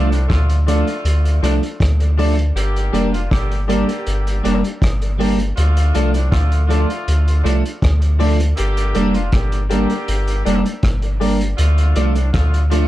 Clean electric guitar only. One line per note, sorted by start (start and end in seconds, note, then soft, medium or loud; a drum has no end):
0.00 0.11 F3 medium
0.00 0.11 A3 loud
0.00 0.12 D4 loud
0.50 muted clean electric guitar stroke soft
0.67 0.87 F3 medium
0.67 0.87 A3 medium
0.67 0.87 D4 medium
1.43 1.62 F3 medium
1.43 1.62 A3 medium
1.43 1.62 D4 medium
1.63 muted clean electric guitar stroke soft
2.18 2.37 F3 medium
2.18 2.37 A3 medium
2.18 2.37 D4 medium
2.38 muted clean electric guitar stroke soft
2.93 3.13 G3 medium
2.93 3.13 A#3 loud
2.93 3.13 D4 loud
3.51 muted clean electric guitar stroke soft
3.68 3.88 G3 medium
3.68 3.88 A#3 medium
3.68 3.88 D4 medium
4.43 4.63 G3 medium
4.43 4.63 A#3 medium
4.43 4.62 D4 medium
4.64 muted clean electric guitar stroke soft
5.18 5.38 G3 medium
5.18 5.38 A#3 medium
5.18 5.39 D4 medium
5.94 6.14 F3 medium
5.94 6.14 A3 medium
5.94 6.14 D4 medium
6.52 muted clean electric guitar stroke soft
6.68 6.88 F3 medium
6.68 6.89 A3 medium
6.68 6.89 D4 medium
7.44 7.64 F3 medium
7.44 7.64 A3 medium
7.44 7.64 D4 medium
7.65 muted clean electric guitar stroke soft
8.20 8.39 F3 medium
8.20 8.39 A3 medium
8.20 8.39 D4 loud
8.41 muted clean electric guitar stroke medium
8.95 9.15 G3 medium
8.95 9.15 A#3 loud
8.95 9.15 D4 loud
9.53 muted clean electric guitar stroke medium
9.72 9.91 G3 medium
9.72 9.91 A#3 medium
9.72 9.91 D4 medium
10.46 10.65 G3 medium
10.46 10.65 A#3 medium
10.46 10.64 D4 medium
10.65 muted clean electric guitar stroke soft
11.21 11.40 G3 medium
11.21 11.41 A#3 medium
11.21 11.41 D4 medium
11.96 12.16 F3 medium
11.96 12.16 A3 medium
11.96 12.16 D4 medium
12.54 muted clean electric guitar stroke soft
12.71 12.88 F3 medium
12.71 12.88 A3 medium
12.71 12.88 D4 medium